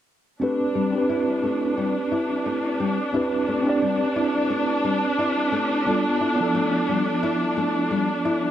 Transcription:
0, 0, Header, 1, 4, 480
1, 0, Start_track
1, 0, Key_signature, 0, "minor"
1, 0, Tempo, 681818
1, 290, Time_signature, 4, 2, 24, 8
1, 5990, End_track
2, 0, Start_track
2, 0, Title_t, "String section"
2, 0, Program_c, 0, 48
2, 295, Note_on_c, 0, 62, 71
2, 5990, Note_off_c, 0, 62, 0
2, 5990, End_track
3, 0, Start_track
3, 0, Title_t, "Tine electric piano"
3, 0, Program_c, 1, 4
3, 281, Note_on_c, 1, 60, 71
3, 288, Note_on_c, 1, 62, 64
3, 297, Note_on_c, 1, 67, 66
3, 305, Note_on_c, 1, 71, 77
3, 421, Control_c, 1, 64, 127
3, 621, Note_off_c, 1, 60, 0
3, 625, Note_off_c, 1, 62, 0
3, 629, Note_off_c, 1, 67, 0
3, 633, Note_off_c, 1, 71, 0
3, 639, Note_on_c, 1, 60, 77
3, 656, Note_on_c, 1, 62, 70
3, 672, Note_on_c, 1, 67, 68
3, 690, Note_on_c, 1, 71, 81
3, 2174, Note_off_c, 1, 60, 0
3, 2183, Note_off_c, 1, 62, 0
3, 2191, Note_off_c, 1, 67, 0
3, 2200, Note_off_c, 1, 71, 0
3, 2200, Note_on_c, 1, 60, 69
3, 2211, Note_on_c, 1, 62, 68
3, 2218, Note_on_c, 1, 67, 68
3, 2229, Note_on_c, 1, 71, 78
3, 2541, Note_off_c, 1, 60, 0
3, 2546, Note_off_c, 1, 62, 0
3, 2549, Note_off_c, 1, 67, 0
3, 2550, Note_on_c, 1, 60, 87
3, 2555, Note_off_c, 1, 71, 0
3, 2568, Note_on_c, 1, 62, 79
3, 2583, Note_on_c, 1, 67, 74
3, 2600, Note_on_c, 1, 74, 99
3, 4090, Note_off_c, 1, 60, 0
3, 4099, Note_off_c, 1, 62, 0
3, 4106, Note_off_c, 1, 67, 0
3, 4114, Note_off_c, 1, 74, 0
3, 4122, Note_on_c, 1, 59, 76
3, 4132, Note_on_c, 1, 62, 70
3, 4140, Control_c, 1, 64, 0
3, 4140, Note_on_c, 1, 65, 67
3, 4147, Note_on_c, 1, 69, 79
3, 4268, Control_c, 1, 64, 127
3, 4462, Note_off_c, 1, 59, 0
3, 4467, Note_off_c, 1, 62, 0
3, 4471, Note_off_c, 1, 65, 0
3, 4474, Note_off_c, 1, 69, 0
3, 4476, Note_on_c, 1, 59, 73
3, 4493, Note_on_c, 1, 62, 72
3, 4508, Note_on_c, 1, 53, 69
3, 4525, Note_on_c, 1, 69, 87
3, 5990, Note_off_c, 1, 53, 0
3, 5990, Note_off_c, 1, 59, 0
3, 5990, Note_off_c, 1, 62, 0
3, 5990, Note_off_c, 1, 69, 0
3, 5990, End_track
4, 0, Start_track
4, 0, Title_t, "Nylon-string guitar"
4, 0, Program_c, 2, 24
4, 291, Note_on_c, 2, 57, 69
4, 519, Note_off_c, 2, 57, 0
4, 528, Note_on_c, 2, 55, 59
4, 649, Note_off_c, 2, 55, 0
4, 770, Note_on_c, 2, 64, 72
4, 998, Note_off_c, 2, 64, 0
4, 1010, Note_on_c, 2, 57, 64
4, 1238, Note_off_c, 2, 57, 0
4, 1249, Note_on_c, 2, 55, 72
4, 1369, Note_off_c, 2, 55, 0
4, 1491, Note_on_c, 2, 64, 65
4, 1719, Note_off_c, 2, 64, 0
4, 1730, Note_on_c, 2, 57, 70
4, 1958, Note_off_c, 2, 57, 0
4, 1970, Note_on_c, 2, 55, 60
4, 2089, Note_off_c, 2, 55, 0
4, 2210, Note_on_c, 2, 64, 72
4, 2438, Note_off_c, 2, 64, 0
4, 2451, Note_on_c, 2, 57, 61
4, 2679, Note_off_c, 2, 57, 0
4, 2689, Note_on_c, 2, 55, 70
4, 2809, Note_off_c, 2, 55, 0
4, 2928, Note_on_c, 2, 64, 66
4, 3157, Note_off_c, 2, 64, 0
4, 3167, Note_on_c, 2, 57, 72
4, 3397, Note_off_c, 2, 57, 0
4, 3409, Note_on_c, 2, 55, 67
4, 3529, Note_off_c, 2, 55, 0
4, 3650, Note_on_c, 2, 64, 70
4, 3878, Note_off_c, 2, 64, 0
4, 3886, Note_on_c, 2, 57, 65
4, 4116, Note_off_c, 2, 57, 0
4, 4127, Note_on_c, 2, 55, 69
4, 4248, Note_off_c, 2, 55, 0
4, 4369, Note_on_c, 2, 64, 61
4, 4598, Note_off_c, 2, 64, 0
4, 4608, Note_on_c, 2, 57, 78
4, 4838, Note_off_c, 2, 57, 0
4, 4849, Note_on_c, 2, 55, 63
4, 4969, Note_off_c, 2, 55, 0
4, 5090, Note_on_c, 2, 64, 77
4, 5318, Note_off_c, 2, 64, 0
4, 5328, Note_on_c, 2, 57, 63
4, 5558, Note_off_c, 2, 57, 0
4, 5565, Note_on_c, 2, 55, 69
4, 5687, Note_off_c, 2, 55, 0
4, 5809, Note_on_c, 2, 64, 68
4, 5990, Note_off_c, 2, 64, 0
4, 5990, End_track
0, 0, End_of_file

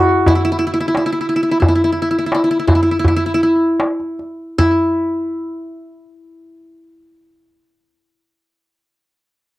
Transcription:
0, 0, Header, 1, 3, 480
1, 0, Start_track
1, 0, Tempo, 680272
1, 1146, Time_signature, 4, 2, 24, 8
1, 1642, Tempo, 739827
1, 2602, Tempo, 803213
1, 6055, End_track
2, 0, Start_track
2, 0, Title_t, "Qanun"
2, 0, Program_c, 0, 107
2, 0, Note_on_c, 0, 64, 77
2, 0, Note_on_c, 0, 66, 71
2, 0, Note_on_c, 0, 68, 56
2, 192, Note_off_c, 0, 64, 0
2, 195, Note_on_c, 0, 64, 68
2, 247, Note_off_c, 0, 64, 0
2, 250, Note_on_c, 0, 64, 47
2, 313, Note_off_c, 0, 64, 0
2, 314, Note_off_c, 0, 68, 0
2, 316, Note_on_c, 0, 64, 56
2, 363, Note_off_c, 0, 64, 0
2, 366, Note_on_c, 0, 64, 47
2, 412, Note_off_c, 0, 64, 0
2, 415, Note_on_c, 0, 64, 54
2, 468, Note_off_c, 0, 64, 0
2, 471, Note_on_c, 0, 64, 44
2, 517, Note_off_c, 0, 64, 0
2, 520, Note_on_c, 0, 64, 51
2, 565, Note_off_c, 0, 64, 0
2, 568, Note_on_c, 0, 64, 46
2, 617, Note_off_c, 0, 64, 0
2, 620, Note_on_c, 0, 64, 51
2, 682, Note_off_c, 0, 64, 0
2, 685, Note_on_c, 0, 64, 41
2, 745, Note_off_c, 0, 64, 0
2, 748, Note_on_c, 0, 64, 49
2, 791, Note_off_c, 0, 64, 0
2, 793, Note_on_c, 0, 64, 40
2, 849, Note_off_c, 0, 64, 0
2, 852, Note_on_c, 0, 64, 43
2, 884, Note_off_c, 0, 66, 0
2, 907, Note_off_c, 0, 64, 0
2, 910, Note_on_c, 0, 64, 42
2, 957, Note_off_c, 0, 64, 0
2, 959, Note_on_c, 0, 64, 48
2, 1005, Note_off_c, 0, 64, 0
2, 1008, Note_on_c, 0, 64, 44
2, 1066, Note_off_c, 0, 64, 0
2, 1069, Note_on_c, 0, 64, 49
2, 1125, Note_off_c, 0, 64, 0
2, 1128, Note_on_c, 0, 64, 39
2, 1186, Note_off_c, 0, 64, 0
2, 1188, Note_on_c, 0, 64, 46
2, 1235, Note_off_c, 0, 64, 0
2, 1238, Note_on_c, 0, 64, 39
2, 1296, Note_off_c, 0, 64, 0
2, 1299, Note_on_c, 0, 64, 46
2, 1355, Note_off_c, 0, 64, 0
2, 1358, Note_on_c, 0, 64, 40
2, 1422, Note_off_c, 0, 64, 0
2, 1425, Note_on_c, 0, 64, 47
2, 1484, Note_off_c, 0, 64, 0
2, 1487, Note_on_c, 0, 64, 39
2, 1539, Note_off_c, 0, 64, 0
2, 1542, Note_on_c, 0, 64, 46
2, 1594, Note_off_c, 0, 64, 0
2, 1597, Note_on_c, 0, 64, 42
2, 1651, Note_off_c, 0, 64, 0
2, 1654, Note_on_c, 0, 64, 49
2, 1712, Note_off_c, 0, 64, 0
2, 1715, Note_on_c, 0, 64, 44
2, 1757, Note_off_c, 0, 64, 0
2, 1759, Note_on_c, 0, 64, 50
2, 1813, Note_off_c, 0, 64, 0
2, 1816, Note_on_c, 0, 64, 42
2, 1865, Note_off_c, 0, 64, 0
2, 1867, Note_on_c, 0, 64, 49
2, 1914, Note_off_c, 0, 64, 0
2, 1917, Note_on_c, 0, 64, 44
2, 1963, Note_off_c, 0, 64, 0
2, 1966, Note_on_c, 0, 64, 47
2, 2020, Note_off_c, 0, 64, 0
2, 2022, Note_on_c, 0, 64, 43
2, 2072, Note_off_c, 0, 64, 0
2, 2075, Note_on_c, 0, 64, 52
2, 2127, Note_off_c, 0, 64, 0
2, 2130, Note_on_c, 0, 64, 46
2, 2183, Note_off_c, 0, 64, 0
2, 2185, Note_on_c, 0, 64, 54
2, 2245, Note_off_c, 0, 64, 0
2, 2247, Note_on_c, 0, 64, 45
2, 2298, Note_off_c, 0, 64, 0
2, 2301, Note_on_c, 0, 64, 56
2, 2355, Note_off_c, 0, 64, 0
2, 2358, Note_on_c, 0, 64, 44
2, 3064, Note_off_c, 0, 64, 0
2, 3067, Note_on_c, 0, 64, 79
2, 5211, Note_off_c, 0, 64, 0
2, 6055, End_track
3, 0, Start_track
3, 0, Title_t, "Darbuka"
3, 186, Note_on_c, 9, 64, 87
3, 257, Note_off_c, 9, 64, 0
3, 668, Note_on_c, 9, 63, 62
3, 739, Note_off_c, 9, 63, 0
3, 1144, Note_on_c, 9, 64, 86
3, 1214, Note_off_c, 9, 64, 0
3, 1273, Note_on_c, 9, 62, 24
3, 1343, Note_off_c, 9, 62, 0
3, 1399, Note_on_c, 9, 62, 28
3, 1470, Note_off_c, 9, 62, 0
3, 1636, Note_on_c, 9, 63, 65
3, 1702, Note_off_c, 9, 63, 0
3, 1872, Note_on_c, 9, 64, 87
3, 1937, Note_off_c, 9, 64, 0
3, 1989, Note_on_c, 9, 62, 24
3, 2054, Note_off_c, 9, 62, 0
3, 2108, Note_on_c, 9, 64, 81
3, 2173, Note_off_c, 9, 64, 0
3, 2350, Note_on_c, 9, 62, 24
3, 2415, Note_off_c, 9, 62, 0
3, 2595, Note_on_c, 9, 63, 65
3, 2656, Note_off_c, 9, 63, 0
3, 2716, Note_on_c, 9, 62, 23
3, 2776, Note_off_c, 9, 62, 0
3, 2832, Note_on_c, 9, 62, 22
3, 2892, Note_off_c, 9, 62, 0
3, 3067, Note_on_c, 9, 64, 74
3, 3127, Note_off_c, 9, 64, 0
3, 6055, End_track
0, 0, End_of_file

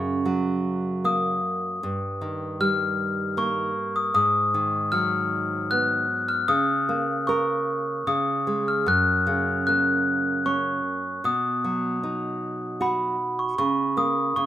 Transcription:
0, 0, Header, 1, 3, 480
1, 0, Start_track
1, 0, Key_signature, 6, "major"
1, 0, Tempo, 778210
1, 1129, Time_signature, 3, 2, 24, 8
1, 3998, Tempo, 796813
1, 5918, Tempo, 780234
1, 8865, End_track
2, 0, Start_track
2, 0, Title_t, "Glockenspiel"
2, 0, Program_c, 0, 9
2, 0, Note_on_c, 0, 85, 75
2, 649, Note_on_c, 0, 87, 81
2, 681, Note_off_c, 0, 85, 0
2, 1608, Note_on_c, 0, 89, 91
2, 1637, Note_off_c, 0, 87, 0
2, 2059, Note_off_c, 0, 89, 0
2, 2085, Note_on_c, 0, 85, 76
2, 2441, Note_on_c, 0, 87, 69
2, 2451, Note_off_c, 0, 85, 0
2, 2551, Note_off_c, 0, 87, 0
2, 2558, Note_on_c, 0, 87, 95
2, 3034, Note_on_c, 0, 89, 88
2, 3052, Note_off_c, 0, 87, 0
2, 3520, Note_on_c, 0, 90, 86
2, 3530, Note_off_c, 0, 89, 0
2, 3877, Note_on_c, 0, 89, 73
2, 3891, Note_off_c, 0, 90, 0
2, 3998, Note_on_c, 0, 87, 89
2, 4003, Note_off_c, 0, 89, 0
2, 4474, Note_on_c, 0, 85, 75
2, 4489, Note_off_c, 0, 87, 0
2, 4933, Note_off_c, 0, 85, 0
2, 4957, Note_on_c, 0, 87, 77
2, 5323, Note_on_c, 0, 89, 69
2, 5332, Note_off_c, 0, 87, 0
2, 5443, Note_on_c, 0, 90, 90
2, 5446, Note_off_c, 0, 89, 0
2, 5910, Note_off_c, 0, 90, 0
2, 5917, Note_on_c, 0, 90, 82
2, 6404, Note_on_c, 0, 85, 77
2, 6414, Note_off_c, 0, 90, 0
2, 6859, Note_off_c, 0, 85, 0
2, 6892, Note_on_c, 0, 87, 74
2, 7585, Note_off_c, 0, 87, 0
2, 7855, Note_on_c, 0, 83, 69
2, 8208, Note_on_c, 0, 85, 63
2, 8218, Note_off_c, 0, 83, 0
2, 8319, Note_off_c, 0, 85, 0
2, 8327, Note_on_c, 0, 85, 86
2, 8567, Note_on_c, 0, 87, 73
2, 8570, Note_off_c, 0, 85, 0
2, 8786, Note_off_c, 0, 87, 0
2, 8805, Note_on_c, 0, 85, 74
2, 8865, Note_off_c, 0, 85, 0
2, 8865, End_track
3, 0, Start_track
3, 0, Title_t, "Nylon-string guitar"
3, 0, Program_c, 1, 24
3, 0, Note_on_c, 1, 42, 57
3, 0, Note_on_c, 1, 49, 51
3, 157, Note_on_c, 1, 54, 46
3, 644, Note_on_c, 1, 58, 51
3, 860, Note_off_c, 1, 49, 0
3, 1101, Note_off_c, 1, 54, 0
3, 1105, Note_off_c, 1, 42, 0
3, 1112, Note_off_c, 1, 58, 0
3, 1130, Note_on_c, 1, 43, 56
3, 1366, Note_on_c, 1, 51, 48
3, 1606, Note_on_c, 1, 55, 45
3, 2080, Note_on_c, 1, 58, 52
3, 2295, Note_off_c, 1, 51, 0
3, 2533, Note_off_c, 1, 55, 0
3, 2535, Note_off_c, 1, 43, 0
3, 2543, Note_off_c, 1, 58, 0
3, 2555, Note_on_c, 1, 44, 61
3, 2802, Note_on_c, 1, 51, 49
3, 3038, Note_on_c, 1, 54, 48
3, 3526, Note_on_c, 1, 59, 50
3, 3736, Note_off_c, 1, 51, 0
3, 3974, Note_off_c, 1, 44, 0
3, 3975, Note_off_c, 1, 54, 0
3, 3990, Note_off_c, 1, 59, 0
3, 4000, Note_on_c, 1, 49, 62
3, 4243, Note_on_c, 1, 58, 52
3, 4483, Note_on_c, 1, 70, 50
3, 4934, Note_off_c, 1, 49, 0
3, 4939, Note_off_c, 1, 58, 0
3, 4947, Note_off_c, 1, 70, 0
3, 4955, Note_on_c, 1, 49, 57
3, 5196, Note_on_c, 1, 56, 50
3, 5426, Note_off_c, 1, 49, 0
3, 5432, Note_off_c, 1, 56, 0
3, 5433, Note_on_c, 1, 42, 61
3, 5676, Note_on_c, 1, 49, 51
3, 5926, Note_on_c, 1, 58, 50
3, 6404, Note_on_c, 1, 61, 49
3, 6613, Note_off_c, 1, 49, 0
3, 6853, Note_off_c, 1, 42, 0
3, 6861, Note_off_c, 1, 58, 0
3, 6869, Note_off_c, 1, 61, 0
3, 6886, Note_on_c, 1, 47, 58
3, 7133, Note_on_c, 1, 54, 47
3, 7373, Note_on_c, 1, 63, 47
3, 7848, Note_on_c, 1, 66, 48
3, 8061, Note_off_c, 1, 54, 0
3, 8298, Note_off_c, 1, 47, 0
3, 8300, Note_off_c, 1, 63, 0
3, 8309, Note_off_c, 1, 66, 0
3, 8327, Note_on_c, 1, 49, 61
3, 8564, Note_on_c, 1, 58, 52
3, 8788, Note_off_c, 1, 49, 0
3, 8794, Note_off_c, 1, 58, 0
3, 8808, Note_on_c, 1, 49, 57
3, 8865, Note_off_c, 1, 49, 0
3, 8865, End_track
0, 0, End_of_file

